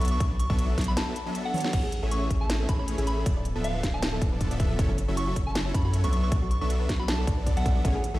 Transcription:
Already playing: sub bass B1, supersaw synth F#3 B3 D4 A4 E5
0.01 synth bell C#6, closed hi-hat
0.05 closed hi-hat
0.08 synth bell C#6, closed hi-hat
0.20 sub bass B1, supersaw synth F#3 B3 D4 A4 D5, kick, closed hi-hat
0.40 synth bell C#6, closed hi-hat
0.50 sub bass B1, supersaw synth F#3 B3 D4 A4 E5, synth bell C#6, kick
0.59 closed hi-hat
0.78 sub bass B1, supersaw synth F#3 B3 D4 A4 E5, kick, snare, closed hi-hat
0.81 closed hi-hat
0.84 synth bell B5, closed hi-hat
0.97 synth bell A5, snare, closed hi-hat
1.16 closed hi-hat
1.26 supersaw synth F#3 B3 D4 A4 E5
1.35 closed hi-hat
1.45 synth bell F#5
1.54 supersaw synth F#3 B3 D4 A4 C#5, closed hi-hat, open hi-hat, high tom
1.60 snare, closed hi-hat
1.73 sub bass A1, supersaw synth E3 A3 C#4 G#4 C#5, kick, closed hi-hat, crash
1.84 synth arpeggio sound G#4
1.92 closed hi-hat
2.03 sub bass A1, supersaw synth E3 A3 C#4 G#4 E5, synth arpeggio sound A4
2.11 synth bell C#6, closed hi-hat
2.22 synth arpeggio sound C#5
2.31 sub bass A1, supersaw synth E3 A3 C#4 G#4 E5, kick, closed hi-hat
2.41 synth arpeggio sound G#4, synth bell A5
2.50 snare, closed hi-hat
2.60 synth arpeggio sound A4
2.69 sub bass A1, supersaw synth E3 A3 C#4 G#4 C#5, synth bell B5, kick, closed hi-hat
2.79 synth arpeggio sound C#5, synth bell B5
2.88 closed hi-hat
2.98 sub bass A1, supersaw synth E3 A3 C#4 G#4 E5, synth arpeggio sound G#4, closed hi-hat
3.07 synth bell B5, closed hi-hat
3.17 synth arpeggio sound A4
3.26 sub bass D1, supersaw synth F3 B3 D4 A4 D5, kick, closed hi-hat
3.36 synth arpeggio sound D5
3.45 closed hi-hat
3.56 sub bass D1, supersaw synth F3 B3 D4 A4 E5, synth arpeggio sound A4
3.64 synth bell F5, closed hi-hat
3.75 synth arpeggio sound B4
3.83 sub bass D1, supersaw synth F3 B3 D4 A4 E5, kick, snare, closed hi-hat
3.94 synth arpeggio sound D5, synth bell A5
4.03 snare, closed hi-hat
4.13 synth arpeggio sound A4
4.22 sub bass D1, supersaw synth F3 B3 D4 A4 D5, kick, closed hi-hat
4.32 synth arpeggio sound B4
4.41 kick, closed hi-hat
4.51 sub bass D1, supersaw synth F3 B3 D4 A4 E5, synth arpeggio sound D5, closed hi-hat
4.60 kick, closed hi-hat
4.70 synth arpeggio sound A4
4.79 sub bass F#1, supersaw synth F#3 C#4 E4 A4 C#5, kick, closed hi-hat
4.89 synth arpeggio sound A4
4.98 closed hi-hat
5.08 sub bass F#1, supersaw synth F#3 C#4 E4 A4 E5, synth arpeggio sound C#5
5.17 synth bell C#6, closed hi-hat
5.27 synth arpeggio sound F#4
5.36 sub bass F#1, supersaw synth F#3 C#4 E4 A4 E5, kick, closed hi-hat
5.47 synth arpeggio sound A4, synth bell A5
5.55 snare, closed hi-hat
5.66 synth arpeggio sound C#5
5.74 sub bass F#2, supersaw synth F#3 C#4 E4 A4 C#5, synth bell B5, kick, closed hi-hat
5.85 synth arpeggio sound F#4, synth bell B5
5.94 closed hi-hat
6.04 sub bass B1, supersaw synth F#3 B3 D4 A4 E5, synth arpeggio sound A4, synth bell C#6, closed hi-hat
6.13 synth bell C#6, closed hi-hat
6.23 synth arpeggio sound B4, synth bell C#6
6.32 sub bass B1, supersaw synth F#3 B3 D4 A4 D5, kick, closed hi-hat
6.42 synth arpeggio sound F#4
6.51 synth bell C#6, closed hi-hat
6.61 sub bass B1, supersaw synth F#3 B3 D4 A4 E5, synth arpeggio sound A4, synth bell C#6
6.70 closed hi-hat
6.80 synth arpeggio sound B4
6.89 sub bass B1, supersaw synth F#3 B3 D4 A4 E5, kick, snare, closed hi-hat
7.00 synth arpeggio sound F#4, synth bell B5
7.08 synth bell A5, snare, closed hi-hat
7.19 synth arpeggio sound A4
7.27 sub bass B1, supersaw synth F#3 B3 D4 A4 D5, synth arpeggio sound D5, kick, closed hi-hat
7.38 synth arpeggio sound B4
7.47 synth arpeggio sound D5, kick, closed hi-hat
7.57 sub bass B1, supersaw synth F#3 B3 D4 A4 E5, synth bell F#5, synth arpeggio sound A5, closed hi-hat
7.66 kick, closed hi-hat
7.76 synth arpeggio sound D5
7.85 sub bass A1, supersaw synth E3 A3 C#4 G#4 C#5, kick, closed hi-hat
7.95 synth arpeggio sound G#4
8.04 closed hi-hat
8.14 sub bass A1, supersaw synth E3 A3 C#4 G#4 E5, synth arpeggio sound A4

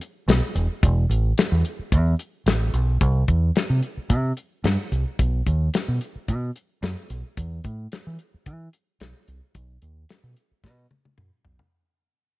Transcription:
0.01 closed hi-hat
0.28 fingered electric bass B1, snare, closed hi-hat
0.55 fingered electric bass E1, closed hi-hat
0.83 fingered electric bass E1, kick, closed hi-hat
1.09 fingered electric bass A1, closed hi-hat
1.38 snare, closed hi-hat
1.52 fingered electric bass E2
1.65 closed hi-hat
1.79 muted fingered electric bass stroke
1.92 fingered electric bass E2, kick, closed hi-hat
2.19 closed hi-hat
2.46 fingered electric bass A1, snare, closed hi-hat
2.73 fingered electric bass B1, closed hi-hat
3.01 fingered electric bass C2, kick, closed hi-hat
3.28 fingered electric bass E2, kick, closed hi-hat
3.56 snare, closed hi-hat
3.70 fingered electric bass C3
3.83 closed hi-hat
3.97 muted fingered electric bass stroke
4.10 fingered electric bass C3, kick, closed hi-hat
4.37 closed hi-hat
4.64 fingered electric bass G2, snare, closed hi-hat
4.92 fingered electric bass C2, closed hi-hat
5.19 fingered electric bass B1, kick, closed hi-hat
5.46 fingered electric bass D#2, kick, closed hi-hat
5.74 snare, closed hi-hat
5.88 fingered electric bass B2
6.01 closed hi-hat
6.15 muted fingered electric bass stroke
6.28 fingered electric bass B2, kick, closed hi-hat
6.56 closed hi-hat
6.83 fingered electric bass F#2, snare, closed hi-hat
7.10 fingered electric bass B1, closed hi-hat
7.37 fingered electric bass E2, kick, closed hi-hat
7.64 fingered electric bass A2, kick, closed hi-hat
7.92 snare, closed hi-hat
8.07 fingered electric bass E3
8.19 closed hi-hat
8.34 muted fingered electric bass stroke
8.46 fingered electric bass E3, kick, closed hi-hat
8.73 closed hi-hat
9.00 fingered electric bass B1, snare, closed hi-hat
9.28 fingered electric bass C2, closed hi-hat
9.55 fingered electric bass B1, kick, closed hi-hat
9.82 fingered electric bass D#2, closed hi-hat
10.09 snare, closed hi-hat
10.23 fingered electric bass B2
10.36 closed hi-hat
10.51 muted fingered electric bass stroke
10.64 fingered electric bass B2, kick, snare
10.91 high tom
11.05 high tom
11.18 fingered electric bass F#2, mid tom
11.45 fingered electric bass B1, floor tom
11.59 floor tom

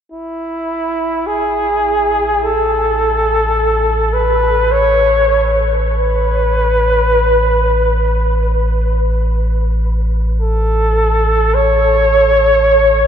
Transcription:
0.11 sub bass A1, flugelhorn E4
1.27 flugelhorn G#4
2.44 flugelhorn A4
4.13 flugelhorn B4
4.72 flugelhorn C#5
5.85 flugelhorn B4
10.41 flugelhorn A4
11.55 flugelhorn C#5

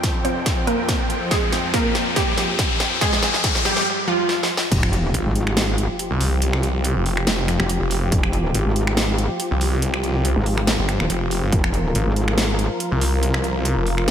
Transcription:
Already playing: supersaw synth F2 F3 C4 G5, synth pluck C4 C5, riser
0.03 kick, snare, closed hi-hat
0.25 synth pluck C4 C5, closed hi-hat
0.46 kick, snare, closed hi-hat
0.67 synth pluck A#3 A#4, closed hi-hat
0.89 kick, snare, closed hi-hat
1.10 closed hi-hat
1.31 synth pluck G#3 G#4, kick, snare, closed hi-hat
1.52 snare, closed hi-hat
1.74 synth pluck A#3 A#4, kick, snare, closed hi-hat
1.95 snare, closed hi-hat
2.16 synth pluck G3 G4, kick, snare, closed hi-hat
2.38 snare, closed hi-hat
2.59 kick, snare, closed hi-hat
2.80 snare, closed hi-hat
3.01 synth pluck G#3 G#4, kick, snare, closed hi-hat
3.13 snare
3.23 snare, closed hi-hat
3.34 snare
3.44 kick, snare, closed hi-hat
3.55 snare
3.65 synth pluck G3 G4, snare, closed hi-hat
3.77 snare
4.08 synth pluck F3 F4
4.29 snare
4.43 snare
4.57 snare
4.72 wobble bass F1, supersaw synth F3 F4 G4, kick, closed hi-hat, crash, sub drop
4.83 finger snap
4.93 closed hi-hat
5.14 detuned saw bass G#1, closed hi-hat
5.26 wobble bass G#1
5.36 closed hi-hat
5.47 finger snap
5.57 snare, closed hi-hat
5.78 closed hi-hat
5.99 closed hi-hat
6.11 detuned saw bass C2
6.21 open hi-hat
6.42 closed hi-hat
6.53 finger snap
6.63 closed hi-hat
6.84 closed hi-hat
6.96 detuned saw bass F1
7.06 open hi-hat
7.17 finger snap
7.27 snare, closed hi-hat
7.48 finger snap, closed hi-hat
7.60 wobble bass F1, finger snap
7.69 closed hi-hat
7.81 detuned saw bass F1
7.91 open hi-hat
8.12 wobble bass F1, kick, closed hi-hat
8.23 finger snap
8.33 closed hi-hat
8.55 detuned saw bass G#1, closed hi-hat
8.66 wobble bass G#1
8.76 closed hi-hat
8.87 finger snap
8.97 snare, closed hi-hat
9.18 closed hi-hat
9.40 closed hi-hat
9.51 detuned saw bass C2
9.61 open hi-hat
9.82 closed hi-hat
9.94 finger snap
10.04 closed hi-hat
10.25 closed hi-hat
10.36 wobble bass G#1
10.46 open hi-hat
10.58 finger snap
10.67 snare, closed hi-hat
10.79 detuned saw bass G1
10.89 finger snap, closed hi-hat
11.00 wobble bass D#1, finger snap
11.10 detuned saw bass F1, closed hi-hat
11.31 open hi-hat
11.43 detuned saw bass G1
11.52 wobble bass F1, supersaw synth A#4, kick, closed hi-hat
11.64 finger snap
11.74 closed hi-hat
11.95 detuned saw bass G#1, closed hi-hat
12.06 wobble bass G#1
12.16 closed hi-hat
12.28 finger snap
12.38 snare, closed hi-hat
12.59 closed hi-hat
12.80 closed hi-hat
12.92 detuned saw bass C2
13.01 open hi-hat
13.23 closed hi-hat
13.34 finger snap
13.44 closed hi-hat
13.65 closed hi-hat
13.77 detuned saw bass F1
13.87 open hi-hat
13.98 finger snap

